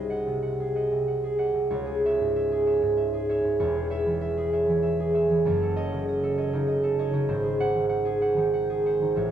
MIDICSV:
0, 0, Header, 1, 2, 480
1, 0, Start_track
1, 0, Key_signature, 4, "minor"
1, 0, Tempo, 643777
1, 1279, Time_signature, 3, 2, 24, 8
1, 2235, Tempo, 612245
1, 6075, Tempo, 633580
1, 7149, End_track
2, 0, Start_track
2, 0, Title_t, "Harp"
2, 0, Program_c, 0, 46
2, 0, Note_on_c, 0, 36, 64
2, 0, Note_on_c, 0, 68, 59
2, 0, Note_on_c, 0, 80, 69
2, 70, Note_on_c, 0, 75, 53
2, 76, Note_on_c, 0, 78, 74
2, 196, Note_on_c, 0, 48, 61
2, 309, Note_off_c, 0, 78, 0
2, 318, Note_on_c, 0, 78, 68
2, 437, Note_off_c, 0, 68, 0
2, 446, Note_on_c, 0, 68, 62
2, 555, Note_off_c, 0, 75, 0
2, 558, Note_off_c, 0, 78, 0
2, 563, Note_on_c, 0, 75, 59
2, 567, Note_on_c, 0, 78, 63
2, 675, Note_off_c, 0, 48, 0
2, 684, Note_on_c, 0, 48, 69
2, 747, Note_off_c, 0, 80, 0
2, 794, Note_off_c, 0, 78, 0
2, 802, Note_on_c, 0, 78, 61
2, 914, Note_off_c, 0, 68, 0
2, 923, Note_on_c, 0, 68, 63
2, 1021, Note_off_c, 0, 75, 0
2, 1026, Note_off_c, 0, 78, 0
2, 1030, Note_on_c, 0, 75, 57
2, 1035, Note_on_c, 0, 78, 69
2, 1140, Note_off_c, 0, 48, 0
2, 1149, Note_on_c, 0, 48, 58
2, 1270, Note_on_c, 0, 37, 81
2, 1273, Note_on_c, 0, 73, 75
2, 1295, Note_off_c, 0, 48, 0
2, 1296, Note_off_c, 0, 75, 0
2, 1298, Note_off_c, 0, 36, 0
2, 1298, Note_off_c, 0, 78, 0
2, 1377, Note_off_c, 0, 68, 0
2, 1386, Note_on_c, 0, 68, 64
2, 1523, Note_off_c, 0, 73, 0
2, 1530, Note_on_c, 0, 73, 63
2, 1534, Note_on_c, 0, 76, 92
2, 1640, Note_on_c, 0, 44, 60
2, 1750, Note_off_c, 0, 76, 0
2, 1759, Note_on_c, 0, 76, 75
2, 1867, Note_off_c, 0, 68, 0
2, 1876, Note_on_c, 0, 68, 75
2, 1976, Note_off_c, 0, 73, 0
2, 1983, Note_off_c, 0, 76, 0
2, 1985, Note_on_c, 0, 73, 59
2, 1992, Note_on_c, 0, 76, 59
2, 2095, Note_off_c, 0, 44, 0
2, 2104, Note_on_c, 0, 44, 73
2, 2207, Note_off_c, 0, 76, 0
2, 2216, Note_on_c, 0, 76, 78
2, 2333, Note_off_c, 0, 68, 0
2, 2343, Note_on_c, 0, 68, 65
2, 2457, Note_off_c, 0, 73, 0
2, 2462, Note_off_c, 0, 76, 0
2, 2467, Note_on_c, 0, 73, 66
2, 2472, Note_on_c, 0, 76, 70
2, 2574, Note_off_c, 0, 44, 0
2, 2583, Note_on_c, 0, 44, 62
2, 2697, Note_off_c, 0, 73, 0
2, 2701, Note_on_c, 0, 28, 80
2, 2706, Note_on_c, 0, 73, 81
2, 2710, Note_on_c, 0, 40, 80
2, 2734, Note_off_c, 0, 44, 0
2, 2740, Note_off_c, 0, 37, 0
2, 2815, Note_off_c, 0, 68, 0
2, 2824, Note_on_c, 0, 68, 58
2, 2935, Note_off_c, 0, 73, 0
2, 2939, Note_off_c, 0, 76, 0
2, 2944, Note_on_c, 0, 73, 61
2, 2949, Note_on_c, 0, 76, 93
2, 3070, Note_on_c, 0, 52, 65
2, 3177, Note_off_c, 0, 76, 0
2, 3187, Note_on_c, 0, 76, 82
2, 3305, Note_off_c, 0, 68, 0
2, 3314, Note_on_c, 0, 68, 78
2, 3427, Note_off_c, 0, 73, 0
2, 3428, Note_off_c, 0, 76, 0
2, 3434, Note_on_c, 0, 73, 67
2, 3440, Note_on_c, 0, 76, 68
2, 3550, Note_off_c, 0, 52, 0
2, 3560, Note_on_c, 0, 52, 77
2, 3660, Note_off_c, 0, 76, 0
2, 3669, Note_on_c, 0, 76, 78
2, 3793, Note_off_c, 0, 68, 0
2, 3803, Note_on_c, 0, 68, 75
2, 3904, Note_off_c, 0, 73, 0
2, 3910, Note_off_c, 0, 76, 0
2, 3913, Note_on_c, 0, 73, 66
2, 3920, Note_on_c, 0, 76, 79
2, 4036, Note_off_c, 0, 52, 0
2, 4045, Note_on_c, 0, 52, 69
2, 4156, Note_on_c, 0, 30, 81
2, 4157, Note_off_c, 0, 73, 0
2, 4163, Note_on_c, 0, 42, 85
2, 4170, Note_on_c, 0, 73, 73
2, 4174, Note_off_c, 0, 28, 0
2, 4178, Note_off_c, 0, 40, 0
2, 4183, Note_off_c, 0, 76, 0
2, 4185, Note_off_c, 0, 68, 0
2, 4186, Note_off_c, 0, 52, 0
2, 4293, Note_on_c, 0, 69, 72
2, 4393, Note_off_c, 0, 73, 0
2, 4402, Note_on_c, 0, 73, 63
2, 4404, Note_on_c, 0, 75, 102
2, 4526, Note_on_c, 0, 49, 63
2, 4644, Note_off_c, 0, 75, 0
2, 4653, Note_on_c, 0, 75, 79
2, 4763, Note_off_c, 0, 69, 0
2, 4772, Note_on_c, 0, 69, 81
2, 4874, Note_off_c, 0, 73, 0
2, 4880, Note_off_c, 0, 75, 0
2, 4884, Note_on_c, 0, 73, 62
2, 4889, Note_on_c, 0, 75, 76
2, 4997, Note_off_c, 0, 49, 0
2, 5004, Note_on_c, 0, 49, 85
2, 5009, Note_on_c, 0, 63, 69
2, 5112, Note_off_c, 0, 75, 0
2, 5122, Note_on_c, 0, 75, 73
2, 5234, Note_off_c, 0, 69, 0
2, 5243, Note_on_c, 0, 69, 74
2, 5355, Note_off_c, 0, 73, 0
2, 5358, Note_off_c, 0, 75, 0
2, 5363, Note_on_c, 0, 73, 71
2, 5369, Note_on_c, 0, 75, 75
2, 5466, Note_off_c, 0, 49, 0
2, 5470, Note_off_c, 0, 63, 0
2, 5475, Note_on_c, 0, 49, 74
2, 5480, Note_on_c, 0, 63, 74
2, 5595, Note_on_c, 0, 32, 81
2, 5598, Note_on_c, 0, 44, 89
2, 5602, Note_on_c, 0, 72, 76
2, 5618, Note_off_c, 0, 30, 0
2, 5619, Note_off_c, 0, 49, 0
2, 5623, Note_off_c, 0, 42, 0
2, 5623, Note_off_c, 0, 69, 0
2, 5623, Note_off_c, 0, 73, 0
2, 5713, Note_on_c, 0, 68, 69
2, 5833, Note_off_c, 0, 72, 0
2, 5843, Note_on_c, 0, 72, 67
2, 5846, Note_on_c, 0, 78, 102
2, 5956, Note_on_c, 0, 51, 66
2, 6063, Note_off_c, 0, 78, 0
2, 6073, Note_on_c, 0, 78, 83
2, 6183, Note_off_c, 0, 68, 0
2, 6192, Note_on_c, 0, 68, 78
2, 6305, Note_off_c, 0, 72, 0
2, 6309, Note_off_c, 0, 78, 0
2, 6314, Note_on_c, 0, 72, 63
2, 6318, Note_on_c, 0, 78, 74
2, 6422, Note_off_c, 0, 63, 0
2, 6424, Note_off_c, 0, 51, 0
2, 6430, Note_on_c, 0, 51, 81
2, 6434, Note_on_c, 0, 63, 74
2, 6551, Note_off_c, 0, 78, 0
2, 6560, Note_on_c, 0, 78, 77
2, 6673, Note_off_c, 0, 68, 0
2, 6682, Note_on_c, 0, 68, 71
2, 6793, Note_off_c, 0, 72, 0
2, 6796, Note_off_c, 0, 78, 0
2, 6801, Note_on_c, 0, 72, 73
2, 6807, Note_on_c, 0, 78, 77
2, 6916, Note_off_c, 0, 63, 0
2, 6921, Note_off_c, 0, 51, 0
2, 6925, Note_on_c, 0, 63, 65
2, 6930, Note_on_c, 0, 51, 61
2, 7030, Note_on_c, 0, 33, 85
2, 7036, Note_on_c, 0, 45, 88
2, 7039, Note_on_c, 0, 73, 75
2, 7053, Note_off_c, 0, 32, 0
2, 7055, Note_off_c, 0, 44, 0
2, 7058, Note_off_c, 0, 72, 0
2, 7058, Note_off_c, 0, 75, 0
2, 7059, Note_off_c, 0, 63, 0
2, 7059, Note_off_c, 0, 68, 0
2, 7060, Note_off_c, 0, 78, 0
2, 7062, Note_off_c, 0, 51, 0
2, 7149, Note_off_c, 0, 33, 0
2, 7149, Note_off_c, 0, 45, 0
2, 7149, Note_off_c, 0, 73, 0
2, 7149, End_track
0, 0, End_of_file